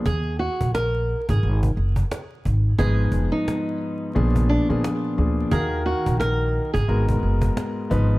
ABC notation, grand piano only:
X:1
M:4/4
L:1/16
Q:"Swing 16ths" 1/4=88
K:Ebm
V:1 name="Grand piano"
z16 | [A,,F,CEc]8 [B,,F,C=DA]3 [B,,F,CDA] [B,,F,CDA]2 [B,,F,CDA]2 | [E,EGBf]6- [E,EGBf] z [A,,A,CGB]6 [A,,F,CEc]2 |]